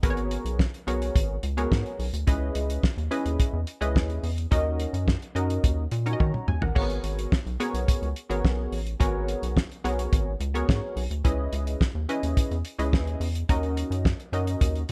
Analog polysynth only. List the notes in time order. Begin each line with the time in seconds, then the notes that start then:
0.03 B3 F#4 G#4 A#4 B4
0.10 C#5
0.87 B3 F#4 G#4 A#4 C#5
1.57 B3 F#4 G#4 A#4 C#5
2.27 C#4 E4 G#4 B4 D#5
3.11 C#4 E4 G#4 B4 D#5
3.81 C#4 E4 G#4 B4 D#5
4.51 C#4 D#4 F#4 A#4 D#5
5.35 C#4 D#4 F#4 A#4 D#5
6.06 C#4 D#4 F#4 A#4 C#5
6.13 D#5
6.20 C#5 A#5
6.48 G#5
6.62 A#4 F#5
6.75 A#3 F#4 G#4 A#4 C#5
6.82 B3
7.60 B3 F#4 G#4 A#4 C#5
8.29 B3 F#4 G#4 A#4 C#5
9.00 B3 F#4 G#4 A#4 C#5
9.84 B3 F#4 G#4 A#4 C#5
10.54 B3 F#4 G#4 A#4 C#5
11.24 C#4 E4 G#4 B4 D#5
12.09 C#4 E4 G#4 B4 D#5
12.78 C#4 E4 G#4 B4 D#5
13.49 C#4 D#4 F#4 A#4 D#5
14.33 C#4 D#4 F#4 A#4 D#5